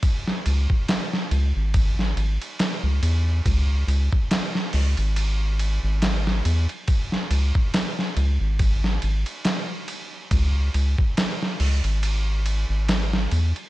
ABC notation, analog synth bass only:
X:1
M:4/4
L:1/16
Q:"Swing 16ths" 1/4=70
K:C#m
V:1 name="Analog synth bass" clef=bass
z2 C,, z3 C,, G,,,3 G,,, z2 C,, E,,2 | C,,2 C,, z3 C,, G,,,4 G,,,3 E,, z | z2 C,, z3 C,, G,,,3 G,,, z4 z | C,,2 C,, z3 C,, G,,,4 G,,,3 E,, z |]